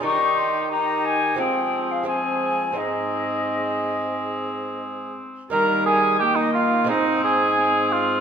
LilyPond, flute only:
\new Staff \with { instrumentName = "Flute" } { \time 4/4 \key ees \major \tempo 4 = 88 des'''8 c'''8 bes''8 aes''8 g''8. f''16 aes''4 | ees''2. r4 | bes''8 aes''8 g''16 ees''16 f''8 ees''8 aes''4 f''8 | }